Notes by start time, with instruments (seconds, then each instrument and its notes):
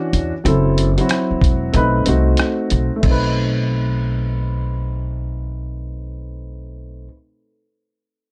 Already playing: grand piano E3 C#4 D4 F#4
0.13 upright bass E2, closed hi-hat
0.44 upright bass F#1, grand piano F#3 C4 E4 A4, closed hi-hat
0.78 closed hi-hat
0.97 grand piano F#3 C4 E4 F#4, closed hi-hat
1.09 cross-stick, closed hi-hat
1.31 muted upright bass stroke
1.41 upright bass E1, kick, closed hi-hat
1.73 upright bass B1, grand piano A3 C4 D#4 B4, closed hi-hat
2.05 upright bass C2, grand piano A3 C4 D#4 F#4, closed hi-hat
2.37 cross-stick, closed hi-hat
2.70 upright bass B1, closed hi-hat
2.96 grand piano A3
3.01 upright bass B1, grand piano C4, kick, crash
3.06 grand piano D#4
3.11 grand piano B4